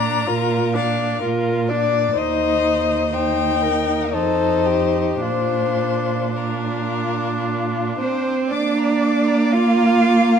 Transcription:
Already playing: A#2 D4 D5 A#5
0.27 A#2 F4 A#4
0.74 D4 D5 F5
1.22 A#2 F4 A#4
1.69 D4 D5
2.16 D#2 D#4 C5 D#5
3.13 D#4 C5 G5
3.62 A#4
4.13 F2 D#4 A4 C5
4.65 G4
5.21 A#2 D4 F4 C5
6.35 D4 F4 A#4
7.99 C4 C5
8.52 A#3 D4 D5 D6
8.78 A#5
9.02 D6
9.27 A#5
9.52 F4 F5 D6
9.77 A#5
10.03 D6
10.28 A#5

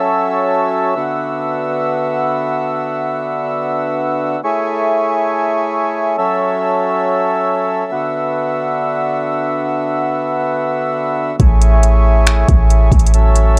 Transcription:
Already playing: F#3 C#4 A4 E5
0.96 D3 B3 F#4
4.44 A3 E4 G#4 C#5
6.18 F#3 C#4 A4 E5
7.92 D3 B3 F#4
11.40 A1 A3 E4 G#4 C#5, kick, closed hi-hat
11.62 closed hi-hat
11.83 closed hi-hat
12.27 finger snap, closed hi-hat
12.49 A1, kick, closed hi-hat
12.70 closed hi-hat
12.92 A1, kick, closed hi-hat
12.99 closed hi-hat
13.06 closed hi-hat
13.14 F#3 C#4 A4 E5, closed hi-hat
13.36 closed hi-hat

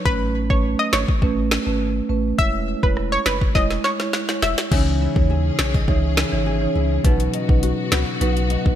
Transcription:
0.05 A1 A3 C#4 B4, kick
0.50 A3 C#4 B4 C#5, kick
0.79 D#5
0.93 G#1 C#5, snare
1.08 kick
1.22 A1 A3 C#4 B4, kick
1.51 snare
1.66 G#1 A3 C#4 B4
2.09 A1 A3 C#4 B4
2.38 E1 G#3 E4 C#5 E5, kick
2.83 E1 G#3 E4 B4 C#5, kick
2.97 cross-stick
3.12 C#5
3.26 F#1 B4, snare
3.41 kick
3.55 E1 G#3 E4 C#5 D#5, kick, snare
3.71 snare
3.84 C#5, snare
3.99 G#3 E4 C#5, snare
4.13 snare
4.29 G#3 E4 C#5, snare
4.42 E1 E5, snare
4.58 snare
4.71 C#2 C#3 E3 C#4 D#4 G#4 C#5, kick, crash
5.01 E4
5.16 D#2 E3 D#4 C#5, kick
5.30 G#4
5.59 B1 C#5, snare
5.74 D#5, kick
5.88 C#2 E3 D#4 G#4 C#5, kick
6.17 E4, snare
6.32 G#1 E3 D#4 C#5
6.46 G#4
6.61 E3 D#4 C#5
6.75 C#2 E4
7.04 B1 B2 F#3 B3 D#4 F#4 B4, kick, closed hi-hat
7.20 closed hi-hat
7.34 D#4, closed hi-hat
7.49 B1 F#3 D#4 B4, kick
7.63 F#4, closed hi-hat
7.92 C#2 B4, snare, closed hi-hat
8.21 B1 F#3 D#4 F#4 B4, closed hi-hat
8.37 closed hi-hat
8.50 D#4, closed hi-hat
8.65 A1 F#3 D#4 B4, kick

